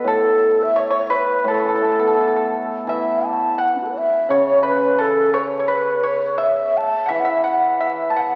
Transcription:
0.04 1.43 A2 medium
0.04 0.73 A4 medium
0.08 0.64 A4 medium
0.63 0.81 E5 loud
0.76 0.89 C#5 medium
0.76 0.95 C#5 medium
0.90 1.08 C#5 medium
0.98 1.05 C#5 medium
1.05 1.17 C#5 medium
1.10 1.43 B4 medium
1.15 1.52 B4 medium
1.44 3.60 A2 medium
1.44 1.53 A4 medium
1.51 2.55 A4 medium
1.51 1.58 A4 soft
1.60 1.67 A4 soft
1.64 2.86 E3 soft
1.69 1.74 A4 soft
1.75 1.83 A4 soft
1.82 3.25 A3 soft
1.82 1.91 A4 soft
1.92 1.98 A4 soft
1.99 3.43 B3 soft
1.99 2.06 A4 soft
2.07 2.13 A4 soft
2.14 3.61 E4 soft
2.14 2.20 A4 soft
2.21 2.26 A4 soft
2.28 2.35 A4 soft
2.36 2.44 A4 medium
2.87 5.01 E3 medium
2.87 3.34 E5 medium
2.92 3.27 E5 medium
3.26 3.62 A5 medium
3.34 3.57 C#5 medium
3.58 4.26 F#5 medium
3.58 3.75 F#5 medium
3.75 3.79 C#4 soft
3.75 3.81 E4 soft
3.82 3.85 F#4 soft
3.82 3.89 A4 soft
3.90 3.92 B4 soft
3.90 3.99 C#5 medium
3.98 4.24 E5 medium
4.24 4.35 E5 medium
4.29 6.41 C#3 medium
4.29 4.62 C#5 medium
4.33 4.68 C#5 medium
4.63 4.97 B4 medium
4.68 5.02 B4 medium
4.99 5.33 A4 medium
4.99 5.40 A4 medium
5.34 5.58 C#5 medium
5.38 5.76 C#5 medium
5.59 5.67 C#5 medium
5.68 6.02 B4 medium
5.74 6.09 B4 medium
6.03 6.38 C#5 medium
6.08 6.45 C#5 medium
6.38 7.03 E5 medium
6.44 6.79 E5 medium
6.77 7.12 A5 loud
7.06 7.23 E5 medium
7.06 7.11 F#5 medium
7.10 8.35 E3 medium
7.10 7.21 E5 medium
7.20 7.32 F#5 medium
7.25 7.43 E5 medium
7.30 7.50 E5 medium
7.44 7.79 F#5 medium
7.51 7.88 F#5 medium
7.80 8.09 E5 medium
7.87 8.22 E5 medium
8.10 8.18 A5 medium
8.16 8.35 F#5 medium
8.21 8.35 F#5 medium

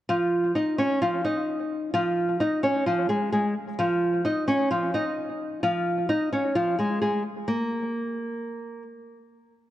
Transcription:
0.09 0.53 F3 medium
0.09 0.52 F4 loud
0.55 0.75 D#4 medium
0.55 0.76 D#5 medium
0.78 0.99 C#4 medium
0.78 0.99 C#5 medium
1.02 1.22 F3 medium
1.02 1.22 F4 medium
1.25 1.90 D#4 medium
1.25 1.90 D#5 medium
1.94 2.38 F3 medium
1.94 2.37 F4 loud
2.40 2.60 D#4 medium
2.40 2.61 D#5 medium
2.63 2.83 C#4 medium
2.63 2.84 C#5 medium
2.86 3.07 F3 medium
2.86 3.06 F4 medium
3.09 3.30 G#3 medium
3.09 3.29 G#4 medium
3.32 3.53 G#3 medium
3.32 3.53 G#4 medium
3.79 4.22 F3 medium
3.79 4.22 F4 loud
4.25 4.45 D#4 medium
4.25 4.45 D#5 medium
4.48 4.68 C#4 medium
4.48 4.68 C#5 medium
4.71 4.91 F3 medium
4.71 4.91 F4 medium
4.94 5.59 D#4 medium
4.94 5.60 D#5 medium
5.63 6.07 F3 medium
5.63 6.06 F4 medium
6.09 6.29 D#4 medium
6.09 6.30 D#5 medium
6.33 6.53 C#4 medium
6.33 6.53 C#5 medium
6.55 6.76 F3 medium
6.55 6.76 F4 medium
6.79 6.99 G#3 medium
6.79 6.99 G#4 medium
7.02 7.22 G#3 medium
7.02 7.22 G#4 medium
7.48 8.82 A#3 medium

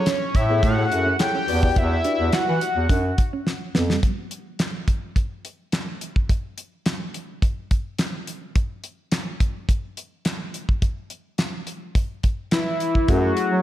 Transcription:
0.00 0.37 C#5 medium
0.06 0.17 C#4 loud
0.06 snare loud
0.06 clap loud
0.06 closed hi-hat medium
0.21 muted clean electric guitar stroke soft
0.35 0.58 A2 loud
0.35 0.64 E5 loud
0.35 kick loud
0.35 closed hi-hat medium
0.50 0.60 B3 medium
0.50 0.64 E4 medium
0.50 0.64 G#4 medium
0.50 0.64 A4 medium
0.50 0.65 C#5 loud
0.63 0.86 A2 loud
0.63 0.74 A3 medium
0.63 1.17 F#5 loud
0.63 kick loud
0.63 closed hi-hat medium
0.78 0.85 E4 medium
0.78 0.85 G#4 medium
0.78 0.85 A4 medium
0.78 0.86 C#5 loud
0.91 1.14 F#2 medium
0.91 1.07 E4 medium
0.91 1.07 G#4 medium
0.91 1.08 A4 medium
0.91 1.08 E5 medium
0.91 muted clean electric guitar stroke medium
0.91 closed hi-hat medium
1.06 1.16 C#4 medium
1.19 1.35 E4 medium
1.19 1.36 G#4 medium
1.19 1.36 A4 medium
1.19 1.36 C#5 medium
1.19 1.79 G5 loud
1.19 snare loud
1.19 clap loud
1.19 closed hi-hat medium
1.35 1.44 C#4 medium
1.48 1.71 E2 loud
1.48 1.94 F#4 medium
1.48 1.94 G4 medium
1.48 1.94 B4 medium
1.48 1.95 D5 medium
1.48 muted clean electric guitar stroke soft
1.48 open hi-hat medium
1.63 1.73 E4 medium
1.63 kick medium
1.76 1.99 E2 loud
1.76 1.87 E4 medium
1.76 2.35 E5 loud
1.76 kick loud
1.76 closed hi-hat medium
1.92 muted clean electric guitar stroke soft
2.04 2.16 D4 medium
2.04 2.65 F#4 medium
2.04 2.65 G4 medium
2.04 2.65 B4 medium
2.04 2.65 D5 medium
2.04 closed hi-hat medium
2.19 2.30 E2 medium
2.33 2.39 E3 soft
2.33 2.44 E4 medium
2.33 3.18 F#5 medium
2.33 snare loud
2.33 clap loud
2.33 closed hi-hat medium
2.48 2.59 E3 loud
2.48 muted clean electric guitar stroke soft
2.61 closed hi-hat medium
2.76 2.87 E2 medium
2.76 2.86 F#4 medium
2.89 3.13 F#2 medium
2.89 3.01 D4 medium
2.89 kick loud
2.89 closed hi-hat medium
3.18 muted clean electric guitar stroke soft
3.18 kick loud
3.18 closed hi-hat medium
3.33 3.43 C#4 medium
3.47 muted clean electric guitar stroke soft
3.47 snare medium
3.75 3.98 F2 loud
3.75 3.86 B3 medium
3.75 snare loud
3.90 4.00 G3 medium
3.90 snare medium
4.03 kick loud
4.03 closed hi-hat medium
4.31 closed hi-hat medium
4.59 snare loud
4.59 clap medium
4.59 closed hi-hat medium
4.88 kick loud
4.88 closed hi-hat medium
5.16 kick medium
5.16 closed hi-hat medium
5.45 closed hi-hat medium
5.72 snare loud
5.72 clap medium
5.72 closed hi-hat medium
6.01 closed hi-hat medium
6.16 kick medium
6.29 kick loud
6.29 closed hi-hat medium
6.58 closed hi-hat medium
6.86 snare loud
6.86 clap medium
6.86 closed hi-hat medium
7.14 closed hi-hat medium
7.42 kick loud
7.42 closed hi-hat medium
7.71 kick medium
7.71 closed hi-hat medium
7.99 snare loud
7.99 clap medium
7.99 closed hi-hat medium
8.27 closed hi-hat medium
8.55 kick loud
8.55 closed hi-hat medium
8.84 closed hi-hat medium
9.12 snare loud
9.12 clap medium
9.12 closed hi-hat medium
9.40 kick loud
9.40 closed hi-hat medium
9.69 kick loud
9.69 closed hi-hat medium
9.97 closed hi-hat medium
10.25 snare loud
10.25 clap medium
10.25 closed hi-hat medium
10.54 closed hi-hat medium
10.69 kick medium
10.82 kick loud
10.82 closed hi-hat medium
11.10 closed hi-hat medium
11.38 snare loud
11.38 clap medium
11.38 closed hi-hat medium
11.67 closed hi-hat medium
11.95 kick loud
11.95 closed hi-hat medium
12.23 kick medium
12.23 closed hi-hat medium
12.51 13.11 E4 loud
12.51 snare loud
12.51 clap medium
12.51 closed hi-hat medium
12.80 closed hi-hat medium
12.95 kick medium
13.08 13.32 F#2 loud
13.08 13.61 A3 medium
13.08 13.61 C#4 medium
13.08 13.62 E4 medium
13.08 13.62 F#4 loud
13.08 13.62 G#4 medium
13.08 kick loud
13.08 closed hi-hat medium
13.37 closed hi-hat medium
13.52 13.62 F#3 loud

